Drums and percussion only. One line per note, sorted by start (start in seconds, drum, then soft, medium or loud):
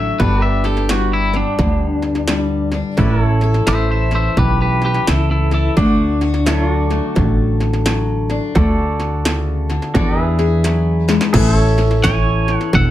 0.20 kick loud
0.20 snare soft
0.64 snare soft
0.77 snare soft
0.89 snare loud
0.89 hi-hat pedal medium
1.34 snare soft
1.59 kick loud
1.59 snare soft
2.02 snare soft
2.15 snare soft
2.28 snare loud
2.28 hi-hat pedal medium
2.72 snare soft
2.97 kick loud
2.97 snare soft
3.41 snare soft
3.54 snare soft
3.67 snare loud
3.67 hi-hat pedal medium
4.11 snare soft
4.37 kick loud
4.37 snare soft
4.82 snare soft
4.94 snare soft
5.07 snare loud
5.07 hi-hat pedal medium
5.51 snare soft
5.77 kick loud
5.77 snare soft
6.21 snare soft
6.34 snare soft
6.46 snare loud
6.46 hi-hat pedal medium
6.90 snare soft
7.16 kick loud
7.16 snare soft
7.60 snare soft
7.73 snare soft
7.86 snare loud
7.86 hi-hat pedal medium
8.30 snare soft
8.55 kick loud
8.55 snare soft
9.00 snare soft
9.25 snare loud
9.25 hi-hat pedal medium
9.70 snare soft
9.82 snare soft
9.95 kick loud
9.95 snare soft
10.39 snare soft
10.64 snare medium
10.64 hi-hat pedal medium
11.09 snare loud
11.21 snare medium
11.34 kick loud
11.34 snare soft
11.34 crash loud
11.78 snare soft
11.91 snare soft
12.04 kick medium
12.04 snare loud
12.04 hi-hat pedal loud
12.48 snare soft
12.61 snare soft
12.73 kick loud
12.73 snare soft